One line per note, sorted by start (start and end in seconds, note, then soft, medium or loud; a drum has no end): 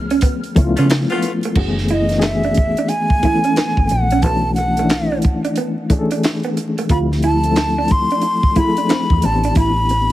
0.00 0.40 C#2 loud
0.00 0.56 F3 medium
0.00 0.56 A3 medium
0.00 0.57 B3 medium
0.00 0.57 C#4 medium
0.00 1.57 G#4 medium
0.10 0.18 C#4 medium
0.10 closed hi-hat soft
0.21 0.36 B3 medium
0.21 kick loud
0.21 closed hi-hat medium
0.44 closed hi-hat soft
0.56 0.73 C#2 medium
0.56 1.43 F3 medium
0.56 1.44 A3 medium
0.56 1.44 B3 medium
0.56 1.44 C#4 medium
0.56 0.65 E4 medium
0.56 muted clean electric guitar stroke soft
0.56 kick medium
0.56 closed hi-hat medium
0.64 1.48 F4 medium
0.77 1.04 C#3 loud
0.77 0.87 A3 medium
0.77 0.87 B3 medium
0.77 0.86 C#4 medium
0.77 0.87 F4 medium
0.77 closed hi-hat medium
0.90 snare loud
0.90 clap medium
0.90 closed hi-hat medium
1.10 1.31 A3 medium
1.10 1.31 B3 medium
1.10 1.19 B3 medium
1.10 1.31 F4 medium
1.10 closed hi-hat soft
1.22 muted clean electric guitar stroke soft
1.22 closed hi-hat medium
1.43 1.52 A3 medium
1.43 closed hi-hat medium
1.55 2.73 F#1 loud
1.55 2.00 E3 medium
1.55 2.00 A3 medium
1.55 2.00 B3 medium
1.55 2.01 C#4 medium
1.55 1.70 F#4 medium
1.55 2.01 G#4 medium
1.55 kick loud
1.55 crash medium
1.78 snare soft
1.88 2.03 E4 medium
1.88 2.26 D#5 medium
1.88 closed hi-hat medium
2.09 3.07 E3 medium
2.09 3.07 A3 medium
2.09 3.07 B3 medium
2.09 3.08 C#4 medium
2.09 snare soft
2.09 closed hi-hat soft
2.13 2.16 F#4 medium
2.19 3.11 G#4 medium
2.19 snare medium
2.19 clap medium
2.19 closed hi-hat medium
2.25 2.90 E5 medium
2.43 2.52 D4 medium
2.43 closed hi-hat soft
2.54 muted clean electric guitar stroke soft
2.54 kick medium
2.54 closed hi-hat medium
2.77 2.86 D4 medium
2.77 closed hi-hat soft
2.88 3.89 G#5 medium
2.88 muted clean electric guitar stroke soft
2.88 closed hi-hat medium
3.10 kick medium
3.22 4.10 E3 medium
3.22 4.10 A3 medium
3.22 4.11 B3 medium
3.22 4.11 C#4 medium
3.22 3.37 E4 medium
3.22 4.12 A4 medium
3.22 kick medium
3.22 closed hi-hat soft
3.44 3.52 C#4 medium
3.44 closed hi-hat soft
3.56 3.70 B3 medium
3.56 snare loud
3.56 clap medium
3.56 closed hi-hat medium
3.77 3.87 G#1 medium
3.77 kick medium
3.88 4.24 F#5 medium
3.88 muted clean electric guitar stroke soft
3.88 closed hi-hat medium
3.92 4.24 A#1 medium
4.11 4.19 C#4 medium
4.11 closed hi-hat soft
4.22 5.40 B1 loud
4.22 4.66 E3 medium
4.22 4.67 A3 medium
4.22 4.38 B3 medium
4.22 4.67 C#4 medium
4.22 4.68 D4 medium
4.22 4.68 F#4 medium
4.22 4.54 A5 medium
4.22 kick loud
4.22 closed hi-hat medium
4.55 5.18 F#5 medium
4.55 muted clean electric guitar stroke soft
4.55 closed hi-hat medium
4.77 5.73 E3 medium
4.77 5.73 A3 medium
4.77 4.86 A3 medium
4.77 5.74 C#4 medium
4.77 5.74 D4 medium
4.77 5.75 E4 medium
4.77 closed hi-hat soft
4.89 snare loud
4.89 clap medium
4.89 closed hi-hat medium
5.12 5.19 D4 medium
5.22 muted clean electric guitar stroke soft
5.22 kick medium
5.22 closed hi-hat medium
5.45 5.52 D4 medium
5.45 closed hi-hat soft
5.56 5.70 B3 medium
5.56 closed hi-hat medium
5.90 6.77 E3 medium
5.90 6.77 A3 medium
5.90 6.78 C#4 medium
5.90 6.78 D4 medium
5.90 5.99 G#4 medium
5.90 muted clean electric guitar stroke soft
5.90 kick medium
5.90 closed hi-hat medium
5.99 6.82 A4 medium
6.11 6.19 D4 medium
6.11 closed hi-hat soft
6.23 snare loud
6.23 clap medium
6.23 closed hi-hat medium
6.43 6.52 B3 medium
6.43 closed hi-hat soft
6.57 muted clean electric guitar stroke soft
6.57 closed hi-hat medium
6.78 6.86 A3 medium
6.78 closed hi-hat soft
6.89 8.07 D2 loud
6.89 7.33 F3 medium
6.89 7.34 A3 medium
6.89 7.34 C4 medium
6.89 7.34 E4 medium
6.89 7.04 F4 medium
6.89 7.35 G4 medium
6.89 6.98 B5 medium
6.89 kick loud
6.89 closed hi-hat medium
7.12 snare soft
7.22 7.37 E4 medium
7.22 7.93 A5 loud
7.22 closed hi-hat medium
7.43 8.40 F3 medium
7.43 8.40 A3 medium
7.43 8.40 C4 medium
7.43 8.41 E4 medium
7.43 8.41 A4 medium
7.43 closed hi-hat soft
7.56 snare loud
7.56 clap medium
7.56 closed hi-hat medium
7.78 7.86 D4 medium
7.88 8.59 C6 loud
7.88 muted clean electric guitar stroke soft
7.88 kick medium
7.88 closed hi-hat medium
8.11 8.19 D4 medium
8.11 closed hi-hat soft
8.21 muted clean electric guitar stroke soft
8.21 closed hi-hat medium
8.43 kick medium
8.56 9.23 F3 medium
8.56 9.23 A3 medium
8.56 9.23 C4 medium
8.56 8.69 E4 medium
8.56 9.23 E4 medium
8.56 8.65 G#4 medium
8.56 9.27 B5 loud
8.56 kick medium
8.56 closed hi-hat medium
8.65 9.27 A4 medium
8.77 8.85 D4 medium
8.77 closed hi-hat medium
8.89 9.02 C4 medium
8.89 snare loud
8.89 clap medium
8.89 closed hi-hat medium
9.10 9.21 E2 medium
9.10 kick medium
9.22 9.50 A1 medium
9.22 9.93 E3 medium
9.22 9.93 B3 medium
9.22 9.94 C4 medium
9.22 9.94 D4 medium
9.22 9.94 G4 medium
9.22 9.57 A5 medium
9.22 muted clean electric guitar stroke soft
9.22 closed hi-hat medium
9.44 9.52 D4 medium
9.44 closed hi-hat soft
9.55 10.12 A1 loud
9.55 9.70 E4 medium
9.55 10.12 B5 loud
9.55 kick loud
9.55 closed hi-hat medium
9.89 muted clean electric guitar stroke soft
9.89 closed hi-hat medium